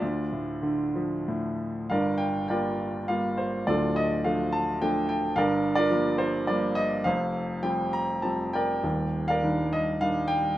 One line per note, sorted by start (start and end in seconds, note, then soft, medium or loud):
0.00 1.87 D2 medium
0.00 1.56 F4 medium
0.00 1.54 D5 medium
0.32 1.27 A2 medium
0.62 1.86 D3 medium
0.96 1.88 F3 medium
1.28 1.89 A2 medium
1.90 3.63 G1 medium
1.90 3.63 G2 medium
1.90 2.49 A#4 medium
1.90 2.49 D5 soft
1.90 2.21 F5 medium
2.18 2.47 G5 medium
2.48 2.97 G3 soft
2.48 2.97 A#3 soft
2.48 2.98 F4 soft
2.48 3.34 A#4 soft
2.48 3.34 D5 medium
2.48 3.10 G5 medium
3.08 3.56 G3 soft
3.08 3.56 A#3 soft
3.08 3.56 F4 soft
3.08 3.39 F5 medium
3.38 3.65 C5 medium
3.67 5.33 D1 medium
3.67 5.33 D2 medium
3.67 4.50 F4 medium
3.67 4.51 A4 medium
3.67 3.97 D5 medium
3.96 4.23 D#5 medium
4.24 4.70 F3 soft
4.24 4.71 A3 soft
4.24 4.71 D4 medium
4.24 4.54 F5 medium
4.52 4.79 A5 medium
4.82 5.26 F3 soft
4.82 5.26 A3 soft
4.82 5.26 D4 medium
4.82 5.07 G5 medium
5.09 5.35 G5 medium
5.36 7.02 G1 medium
5.36 7.02 G2 medium
5.36 5.76 A#4 medium
5.36 5.74 D5 medium
5.36 5.75 F5 medium
5.75 6.59 F4 medium
5.75 6.59 A#4 medium
5.75 6.16 D5 medium
5.90 6.37 F3 soft
5.90 6.37 G3 soft
5.90 6.38 A#3 medium
6.18 6.46 C5 medium
6.47 6.94 F3 soft
6.47 6.95 G3 soft
6.47 6.95 A#3 medium
6.47 6.75 D5 medium
6.75 7.03 D#5 medium
7.04 8.80 F1 medium
7.04 8.79 F2 medium
7.04 7.91 C5 medium
7.04 7.65 F5 medium
7.63 8.11 F3 soft
7.63 8.12 G3 soft
7.63 8.12 C4 soft
7.63 7.95 G5 medium
7.93 8.22 A#5 medium
8.22 8.71 F3 soft
8.22 8.72 G3 soft
8.22 8.72 C4 soft
8.22 8.54 A5 medium
8.53 9.29 A#4 medium
8.53 9.29 D5 medium
8.53 9.30 G5 medium
8.83 10.54 D#1 medium
8.83 10.55 D#2 medium
9.28 10.13 A#4 medium
9.28 10.13 D5 medium
9.28 9.74 F5 medium
9.43 9.90 D#3 soft
9.43 9.90 G3 soft
9.43 9.91 D4 soft
9.73 10.00 D#5 medium
10.01 10.47 D#3 soft
10.01 10.47 G3 soft
10.01 10.48 D4 medium
10.01 10.31 F5 medium
10.28 10.58 G5 medium